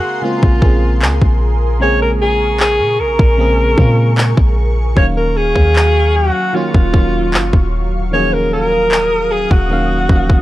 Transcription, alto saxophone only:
0, 0, Header, 1, 2, 480
1, 0, Start_track
1, 0, Key_signature, -5, "minor"
1, 0, Tempo, 789474
1, 1098, Time_signature, 4, 2, 24, 8
1, 6335, End_track
2, 0, Start_track
2, 0, Title_t, "Alto saxophone"
2, 0, Program_c, 0, 65
2, 0, Note_on_c, 0, 66, 86
2, 143, Note_on_c, 0, 65, 86
2, 152, Note_off_c, 0, 66, 0
2, 861, Note_off_c, 0, 65, 0
2, 1107, Note_on_c, 0, 73, 103
2, 1214, Note_off_c, 0, 73, 0
2, 1228, Note_on_c, 0, 70, 88
2, 1280, Note_off_c, 0, 70, 0
2, 1348, Note_on_c, 0, 68, 87
2, 1566, Note_off_c, 0, 68, 0
2, 1584, Note_on_c, 0, 68, 95
2, 1824, Note_on_c, 0, 70, 97
2, 1833, Note_off_c, 0, 68, 0
2, 2781, Note_off_c, 0, 70, 0
2, 3024, Note_on_c, 0, 73, 98
2, 3076, Note_off_c, 0, 73, 0
2, 3143, Note_on_c, 0, 70, 95
2, 3263, Note_on_c, 0, 68, 105
2, 3272, Note_off_c, 0, 70, 0
2, 3745, Note_on_c, 0, 66, 85
2, 3754, Note_off_c, 0, 68, 0
2, 3983, Note_on_c, 0, 65, 89
2, 3992, Note_off_c, 0, 66, 0
2, 4700, Note_off_c, 0, 65, 0
2, 4945, Note_on_c, 0, 73, 98
2, 5067, Note_on_c, 0, 70, 93
2, 5076, Note_off_c, 0, 73, 0
2, 5182, Note_off_c, 0, 70, 0
2, 5186, Note_on_c, 0, 70, 105
2, 5664, Note_on_c, 0, 68, 87
2, 5673, Note_off_c, 0, 70, 0
2, 5784, Note_on_c, 0, 66, 81
2, 5793, Note_off_c, 0, 68, 0
2, 6335, Note_off_c, 0, 66, 0
2, 6335, End_track
0, 0, End_of_file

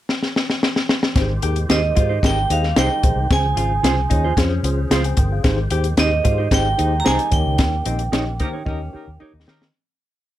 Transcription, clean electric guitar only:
0, 0, Header, 1, 2, 480
1, 0, Start_track
1, 0, Key_signature, -4, "major"
1, 0, Tempo, 536673
1, 1037, Time_signature, 4, 2, 24, 8
1, 9286, End_track
2, 0, Start_track
2, 0, Title_t, "Clean electric guitar"
2, 0, Program_c, 0, 27
2, 1513, Note_on_c, 0, 63, 72
2, 1520, Note_on_c, 0, 67, 86
2, 1524, Note_on_c, 0, 72, 85
2, 1613, Note_off_c, 0, 63, 0
2, 1616, Note_off_c, 0, 67, 0
2, 1618, Note_off_c, 0, 72, 0
2, 1872, Note_on_c, 0, 72, 54
2, 1879, Note_on_c, 0, 67, 43
2, 1880, Note_on_c, 0, 63, 43
2, 1950, Note_off_c, 0, 72, 0
2, 1954, Note_off_c, 0, 63, 0
2, 1954, Note_off_c, 0, 67, 0
2, 2470, Note_on_c, 0, 63, 68
2, 2473, Note_on_c, 0, 67, 69
2, 2477, Note_on_c, 0, 72, 80
2, 2570, Note_off_c, 0, 63, 0
2, 2571, Note_off_c, 0, 67, 0
2, 2574, Note_off_c, 0, 72, 0
2, 3428, Note_on_c, 0, 65, 72
2, 3434, Note_on_c, 0, 68, 68
2, 3440, Note_on_c, 0, 72, 79
2, 3528, Note_off_c, 0, 65, 0
2, 3531, Note_off_c, 0, 68, 0
2, 3534, Note_off_c, 0, 72, 0
2, 3796, Note_on_c, 0, 72, 60
2, 3801, Note_on_c, 0, 68, 51
2, 3804, Note_on_c, 0, 65, 49
2, 3871, Note_off_c, 0, 72, 0
2, 3873, Note_off_c, 0, 68, 0
2, 3875, Note_off_c, 0, 65, 0
2, 4390, Note_on_c, 0, 65, 69
2, 4397, Note_on_c, 0, 68, 71
2, 4401, Note_on_c, 0, 72, 77
2, 4488, Note_off_c, 0, 65, 0
2, 4492, Note_off_c, 0, 68, 0
2, 4494, Note_off_c, 0, 72, 0
2, 5348, Note_on_c, 0, 63, 72
2, 5355, Note_on_c, 0, 67, 74
2, 5358, Note_on_c, 0, 72, 86
2, 5447, Note_off_c, 0, 63, 0
2, 5450, Note_off_c, 0, 67, 0
2, 5452, Note_off_c, 0, 72, 0
2, 5706, Note_on_c, 0, 72, 60
2, 5714, Note_on_c, 0, 67, 49
2, 5718, Note_on_c, 0, 63, 44
2, 5785, Note_off_c, 0, 72, 0
2, 5789, Note_off_c, 0, 67, 0
2, 5791, Note_off_c, 0, 63, 0
2, 6304, Note_on_c, 0, 63, 75
2, 6308, Note_on_c, 0, 67, 70
2, 6312, Note_on_c, 0, 72, 83
2, 6405, Note_off_c, 0, 63, 0
2, 6407, Note_off_c, 0, 67, 0
2, 6409, Note_off_c, 0, 72, 0
2, 7263, Note_on_c, 0, 63, 72
2, 7267, Note_on_c, 0, 67, 75
2, 7272, Note_on_c, 0, 73, 76
2, 7366, Note_off_c, 0, 63, 0
2, 7368, Note_off_c, 0, 67, 0
2, 7370, Note_off_c, 0, 73, 0
2, 7631, Note_on_c, 0, 73, 55
2, 7637, Note_on_c, 0, 67, 47
2, 7640, Note_on_c, 0, 63, 48
2, 7709, Note_off_c, 0, 73, 0
2, 7712, Note_off_c, 0, 67, 0
2, 7713, Note_off_c, 0, 63, 0
2, 8231, Note_on_c, 0, 63, 73
2, 8239, Note_on_c, 0, 67, 79
2, 8244, Note_on_c, 0, 73, 77
2, 8332, Note_off_c, 0, 63, 0
2, 8335, Note_off_c, 0, 67, 0
2, 8338, Note_off_c, 0, 73, 0
2, 9286, End_track
0, 0, End_of_file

